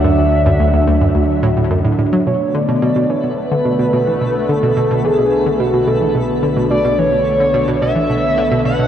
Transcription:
<<
  \new Staff \with { instrumentName = "Analog synth lead" } { \time 4/4 \key d \major \tempo 4 = 108 e''2. r4 | \key b \minor cis''8 d''4 cis''8 b'2 | a'4 gis'4 fis'8 a'4 r8 | d''8 cis''4. e''4. fis''8 | }
  \new Staff \with { instrumentName = "Synth texture" } { \time 4/4 \key d \major r1 | \key b \minor <a b'>1~ | <a b'>1~ | <a b'>1 | }
  \new Staff \with { instrumentName = "Analog synth pad" } { \time 4/4 \key d \major << { d'1 | \key b \minor a1~ | a1~ | a2 a'2 | } \\ { <d fis>1 | <d b>1~ | <d b>1~ | <d b>1 | } >> }
  \new Staff \with { instrumentName = "Synth arpeggio sound" } { \clef bass \time 4/4 \key d \major fis,16 d,16 r16 fis,16 d,16 d,16 d,16 fis,16 d,16 r16 a,16 a,16 fis,16 a,16 a,16 fis16 | \key b \minor b,16 r16 d16 b,16 b,16 b,16 e16 b,16 r16 d16 b,16 b,16 b,16 e16 b,16 r16 | d16 b,16 b,16 b,16 e16 b,16 r16 d16 b,16 b,16 b,16 e16 b,16 r16 d16 b,16 | b,16 b,16 e16 b,16 r16 d16 b,16 b,16 b,16 e16 b,16 r16 d16 b,16 b,16 b,16 | }
  \new Staff \with { instrumentName = "Synth drone" } { \clef bass \time 4/4 \key d \major d,1 | \key b \minor b,,1~ | b,,1~ | b,,1 | }
>>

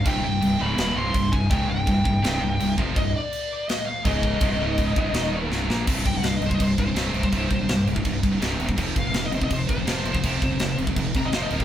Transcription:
<<
  \new Staff \with { instrumentName = "Lead electric guitar" } { \time 4/4 \key f \dorian \tempo 4 = 165 g''8 g''4 b''4 c'''4 aes''8 | g''8 g''2. r8 | ees''8 d''4. ees''8 f''8 ees''4~ | ees''2. r4 |
r8 g''16 fis''16 f''16 ees''16 c''16 ees''16 c''8 c''4.~ | c''4. r2 r8 | r8 f''16 f''16 f''16 ees''16 c''16 ees''16 c''8 c''4.~ | c''4. r4 bes''16 ees''16 c''16 ees''16 bes'16 g'16 | }
  \new Staff \with { instrumentName = "Distorted electric guitar" } { \clef bass \time 4/4 \key f \dorian <c, g, c>8 <c, g,>8 <c, g,>8 <des, aes, des>8 <ees, bes, ees>8 <c, g, c>8 <c, g,>8 <c, g,>8 | <des, aes, des>8 <c, g,>8 <c, g,>8 <c, g,>8 <c, g, c>8 <c, g,>8 <c, g,>8 <f, c f>8 | <c, g,>8 r2 r8 <des, aes, des>4 | <c, g, c>8 <des, aes, des>4 <c, g, c>8 <ees, bes, ees>4 <c, g, c>8 <bes, f bes>8 |
<c, g, c>8 <c, g,>16 <c, g,>16 <c, g,>8 <c, g,>16 <c, g,>16 <c, g,>8 <c, g,>16 <c, g,>16 <c, g, c>8 <c, g, c>16 <c, g,>16 | <c, g, c>8 <c, g,>16 <c, g,>16 <c, g,>8 <c, g,>16 <c, g,>16 <c, g,>8 <c, g,>16 <c, g,>16 <c, g, c>8 <c, g, c>16 <c, g,>16 | <f, c f>8 <f, c>16 <f, c>16 <f, c>8 <f, c>16 <f, c>16 <f, c>8 <f, c>16 <f, c>16 <f, c f>8 <f, c f>16 <f, c>16 | <f, c f>8 <f, c>16 <f, c>16 <f, c>8 <f, c>16 <f, c>16 <f, c>8 <f, c>16 <f, c>16 <f, c f>8 <f, c f>16 <f, c>16 | }
  \new Staff \with { instrumentName = "Fingered electric bass" } { \clef bass \time 4/4 \key f \dorian c,,8 c,,8 c,,8 des,,8 ees,,8 c,,8 c,,8 c,,8 | des,,8 c,,8 c,,8 c,,8 c,,8 c,,8 c,,8 f,,8 | c,,8 r2 r8 des,,4 | c,,8 des,,4 c,,8 ees,,4 c,,8 bes,,8 |
c,,8 c,,8 c,,8 c,,8 c,,8 c,,8 c,,8 c,,8 | c,,8 c,,8 c,,8 c,,8 c,,8 c,,8 c,,8 ees,,8 | f,,8 f,,8 f,,8 f,,8 f,,8 f,,8 f,,8 f,,8 | f,,8 f,,8 f,,8 f,,8 f,,8 f,,8 f,,8 d,,8 | }
  \new DrumStaff \with { instrumentName = "Drums" } \drummode { \time 4/4 <cymc bd>4 cymc4 <cymc sn>4 <cymc bd>8 bd8 | <cymc bd>4 <cymc bd>8 bd8 <cymc sn>4 cymc8 bd8 | <cymc bd>4 cymc4 <cymc sn>4 <cymc bd>8 bd8 | <cymc bd>4 <cymc bd>8 bd8 <cymc sn>4 sn8 sn8 |
<cymc bd>8 <cymc bd>8 <cymc sn>8 cymc16 bd16 <cymc bd>8 <cymc bd>8 <cymc sn>8 cymc16 bd16 | <cymc bd>8 <cymc bd>8 <cymc sn>8 cymc16 bd16 <cymc bd>8 <cymc bd>8 <cymc sn>8 cymc16 bd16 | <cymc bd>8 <cymc bd>8 <cymc sn>8 cymc16 bd16 <cymc bd>8 <cymc bd>8 <cymc sn>8 cymc16 bd16 | <cymc bd>8 <cymc bd>8 <cymc sn>8 cymc16 bd16 <cymc bd>8 <cymc bd>8 <cymc sn>8 cymc16 bd16 | }
>>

